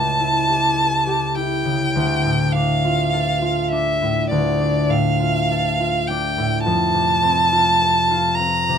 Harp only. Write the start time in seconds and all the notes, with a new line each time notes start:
Already playing: C#2 C#3 A4
0.20 E4
0.49 G4
0.77 A4
1.06 G4
1.37 E4
1.65 C#3
1.96 D2
2.24 A2
2.55 D4
2.85 F4
3.13 A4
3.42 F4
3.72 D4
4.02 A2
4.31 D2
4.60 D4
4.89 A2
5.20 F4
5.51 A4
5.80 F4
6.10 D4
6.38 A2
6.66 F2
6.94 C3
7.23 C4
7.52 F4
7.82 A4
8.11 F4
8.39 C4
8.69 C3